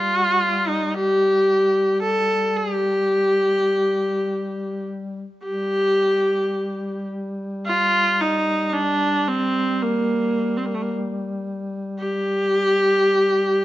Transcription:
0.00 5.28 G3 soft
0.00 0.69 F4 medium
0.68 0.95 D#4 medium
0.94 2.02 G4 loud
2.02 2.58 A4 loud
2.57 4.87 G4 loud
5.43 13.65 G3 soft
5.43 7.06 G4 loud
7.66 8.22 F4 medium
8.21 8.69 D#4 medium
8.69 9.29 D4 medium
8.69 8.75 D#4 medium
9.28 9.83 C4 medium
9.81 10.59 A#3 medium
10.57 10.67 C4 medium
10.66 10.76 A#3 medium
10.74 10.84 A3 medium
10.82 10.93 A#3 medium
11.98 13.65 G4 loud

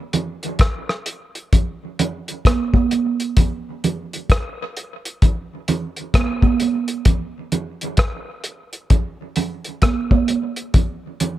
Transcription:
0.13 closed hi-hat medium
0.13 low conga medium
0.43 closed hi-hat soft
0.59 kick loud
0.59 cross-stick loud
0.59 closed hi-hat medium
0.89 cross-stick medium
1.06 closed hi-hat medium
1.35 closed hi-hat medium
1.53 kick loud
1.53 closed hi-hat medium
1.53 low conga medium
1.99 closed hi-hat medium
1.99 low conga medium
2.28 closed hi-hat soft
2.45 kick loud
2.45 cross-stick loud
2.45 closed hi-hat medium
2.45 high conga medium
2.74 kick medium
2.74 high conga medium
2.91 closed hi-hat medium
2.91 high conga medium
3.20 closed hi-hat medium
3.37 kick loud
3.37 closed hi-hat loud
3.37 low conga medium
3.84 closed hi-hat medium
3.84 low conga medium
4.13 closed hi-hat soft
4.30 kick loud
4.30 cross-stick loud
4.30 closed hi-hat medium
4.77 closed hi-hat medium
5.05 closed hi-hat medium
5.22 kick loud
5.22 closed hi-hat medium
5.22 low conga medium
5.68 closed hi-hat medium
5.68 low conga medium
5.96 closed hi-hat soft
6.14 kick loud
6.14 cross-stick loud
6.14 closed hi-hat medium
6.14 high conga medium
6.42 kick medium
6.42 high conga medium
6.60 closed hi-hat medium
6.60 high conga medium
6.88 closed hi-hat medium
7.05 kick loud
7.05 closed hi-hat loud
7.05 low conga medium
7.52 closed hi-hat medium
7.52 low conga medium
7.81 closed hi-hat soft
7.97 kick loud
7.97 cross-stick loud
7.97 closed hi-hat medium
8.44 closed hi-hat medium
8.73 closed hi-hat soft
8.90 kick loud
8.90 closed hi-hat medium
8.90 low conga medium
9.36 closed hi-hat medium
9.36 low conga medium
9.65 closed hi-hat soft
9.82 kick loud
9.82 cross-stick loud
9.82 closed hi-hat medium
9.82 high conga medium
10.11 kick medium
10.11 high conga medium
10.28 closed hi-hat medium
10.28 high conga medium
10.56 closed hi-hat medium
10.74 kick loud
10.74 closed hi-hat loud
10.74 low conga medium
11.20 closed hi-hat medium
11.20 low conga medium

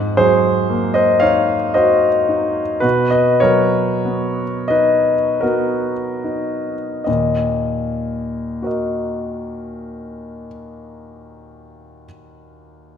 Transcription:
0.00 2.79 G#2 soft
0.17 1.00 F#3 soft
0.17 0.90 G#4 medium
0.17 0.94 C5 medium
0.70 1.53 A#3 soft
0.94 1.19 C5 soft
0.94 1.21 D#5 medium
1.20 2.07 D#4 soft
1.20 1.70 C#5 medium
1.20 1.73 F5 medium
1.74 2.61 F#4 soft
1.74 2.79 C5 soft
1.74 2.83 D#5 medium
2.29 2.83 D#4 soft
2.80 7.02 B2 soft
2.80 3.09 F#4 soft
2.80 3.10 B4 medium
3.10 3.39 B4 soft
3.10 3.41 D#5 medium
3.40 4.43 F#3 soft
3.40 4.66 A#4 soft
3.40 4.69 C#5 medium
4.05 5.14 B3 soft
4.68 5.91 D#4 soft
4.68 5.39 B4 soft
4.68 5.42 D#5 medium
5.41 6.75 B3 soft
5.41 7.02 F#4 soft
5.41 7.05 A#4 soft
6.24 7.06 D#4 soft
7.04 10.48 D#2 soft
7.04 10.48 A#2 soft
7.04 8.65 D#5 soft
8.62 12.03 F#4 soft
8.62 12.05 A#4 soft
8.67 12.07 D#5 soft

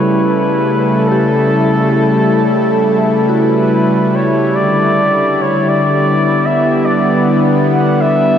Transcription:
0.00 4.57 C#3 medium
0.00 8.38 G3 medium
0.00 4.55 A3 medium
0.00 0.42 B3 medium
0.00 8.38 E4 medium
0.00 6.80 A4 medium
0.00 0.40 B4 medium
0.00 1.10 B4 medium
1.08 5.25 G4 medium
1.08 3.13 A4 loud
3.29 7.42 F#4 medium
3.39 4.17 B4 medium
4.16 4.57 C#5 medium
4.56 8.38 D3 medium
4.56 5.43 D5 loud
5.41 5.70 C#5 medium
5.69 6.47 D5 loud
5.92 8.38 B3 medium
6.46 6.87 E5 loud
6.86 7.46 D5 loud
7.68 8.38 B4 medium
7.73 8.02 F#5 medium
8.01 8.38 E5 loud

